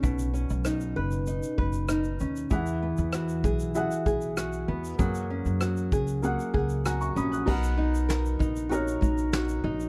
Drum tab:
CC |----------------|----------------|----------------|x---------------|
SH |xxxxxx-xxx-xxxxx|xx-xxxxxxxxxxx-x|xx-xxxxxxx-xxxxx|-x-xxxxxxxxxxx-x|
SD |----r-------r---|----r-------r---|----r-------r---|----o-------o---|
BD |o---------o-----|o-----o---o-----|o-----o---o-----|o-----o---o-----|